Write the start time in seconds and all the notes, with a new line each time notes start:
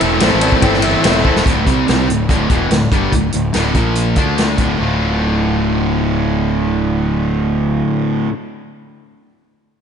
Already playing: A2 E3 C4 E4 A4 E5
0.00 E1 A3 C4 E4 A4 C5 G5, ride
0.20 A1 A3 C4 E4 A4 C5 E5, snare, ride, cowbell
0.24 A4
0.33 A1
0.40 A3 C4 E4 A4 C5 D5, ride
0.45 A2 E3
0.52 kick
0.60 G1 A2 E3 A3 C4 E4 A4 C5 G5, kick, ride, cowbell
0.64 E4 A4
0.73 snare
0.80 E4 A4 C5 E5, ride
0.84 A2 E3 A3 C4 E4
1.02 E1 A3 C4 E4 A4 C5 E5, snare, ride, cowbell
1.06 E4 A4
1.23 D1 C4 E4 A4 C5 E5, kick
1.28 A3
1.36 snare
1.45 D1 D2 A2 D3, kick, closed hi-hat
1.65 C2 C3 G3 C4, kick, closed hi-hat
1.87 C2 C3 G3 C4, snare, closed hi-hat
2.08 D1 D2 A2, closed hi-hat
2.29 D1 D2 A2 D3, kick, closed hi-hat
2.49 E1 E2 B2 E3, kick, closed hi-hat
2.70 D1 D2 A2, snare, closed hi-hat
2.92 G1 G2 D3 G3, kick, closed hi-hat
3.12 D1 D2 A2, kick, closed hi-hat
3.32 D1 D2 A2, closed hi-hat
3.53 D1 D2 A2 D3, snare, closed hi-hat
3.75 A#1 A#2 F3 A#3, kick, closed hi-hat
3.95 closed hi-hat
4.16 D2 D3 A3 D4, kick, closed hi-hat
4.38 snare, closed hi-hat
4.58 D1 D2 A2 D3, kick, closed hi-hat
4.79 D1 D2 A2 A3 F4
4.83 D3